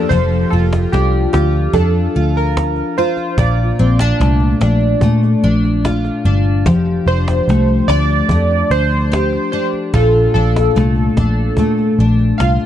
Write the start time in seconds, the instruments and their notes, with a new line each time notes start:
Already playing: steel-string acoustic guitar G2 F3 A#3 D4, synth keys A4
0.09 picked electric bass F1, steel-string acoustic guitar F3 A4, synth keys C5, cajon bass
0.31 cajon slap
0.50 picked electric bass F1, steel-string acoustic guitar F4, synth keys A4, cajon slap
0.73 cajon slap
0.92 picked electric bass C2, steel-string acoustic guitar D4, synth keys G4, cajon slap
1.13 cajon slap
1.33 picked electric bass D2, steel-string acoustic guitar F4, synth keys G4, cajon slap
1.53 cajon slap
1.73 picked electric bass F2, steel-string acoustic guitar D4, synth keys A4, cajon bass
1.96 cajon slap
2.15 picked electric bass D2, steel-string acoustic guitar F4, cajon slap
2.36 synth keys A#4, cajon slap
2.57 cajon slap
2.76 cajon slap
2.97 steel-string acoustic guitar F4, synth keys C5, cajon slap
3.17 cajon slap
3.38 picked electric bass A#1, steel-string acoustic guitar A#2 F4, synth keys D5, cajon bass
3.58 cajon slap
3.78 picked electric bass A#1, steel-string acoustic guitar C4, cajon slap
3.99 steel-string acoustic guitar D4, cajon slap
4.20 picked electric bass C2, steel-string acoustic guitar A3, cajon slap
4.40 cajon slap
4.61 picked electric bass A#1, steel-string acoustic guitar D4, cajon slap
4.81 cajon slap
5.01 picked electric bass A#2, steel-string acoustic guitar A3, cajon bass
5.23 cajon slap
5.44 picked electric bass A#1, steel-string acoustic guitar D4, cajon slap
5.64 cajon slap
5.85 steel-string acoustic guitar F4, cajon slap
6.05 cajon slap
6.25 picked electric bass G1, steel-string acoustic guitar D4, cajon slap
6.45 cajon slap
6.66 picked electric bass F1, steel-string acoustic guitar F3 G4, cajon bass
6.86 cajon slap
7.06 picked electric bass F1, steel-string acoustic guitar D4, synth keys C5, cajon slap
7.28 cajon slap
7.48 picked electric bass C2, steel-string acoustic guitar A3, cajon slap
7.68 cajon slap
7.88 picked electric bass D2, steel-string acoustic guitar D4, synth keys D5, cajon slap
8.09 cajon slap
8.29 picked electric bass F2, steel-string acoustic guitar A3, cajon bass
8.51 cajon slap
8.71 picked electric bass D2, steel-string acoustic guitar D4, synth keys C5, cajon slap
8.92 cajon slap
9.12 steel-string acoustic guitar G4, cajon slap
9.33 cajon slap
9.52 steel-string acoustic guitar D4, synth keys C5, cajon slap
9.73 cajon slap
9.94 picked electric bass A#1, steel-string acoustic guitar A#2 F4, synth keys A4, cajon bass
10.14 cajon slap
10.34 picked electric bass A#1, steel-string acoustic guitar D4, synth keys A4, cajon slap
10.56 cajon slap
10.76 picked electric bass C2, steel-string acoustic guitar A3, cajon slap
10.96 cajon slap
11.17 picked electric bass A#1, steel-string acoustic guitar D4, cajon bass, cajon slap
11.36 cajon slap
11.57 picked electric bass A#2, steel-string acoustic guitar A3, cajon bass
11.79 cajon slap
11.98 picked electric bass A#1, steel-string acoustic guitar D4, cajon slap
12.19 cajon slap
12.38 picked electric bass C2, steel-string acoustic guitar F4, synth keys F5, cajon slap
12.60 cajon slap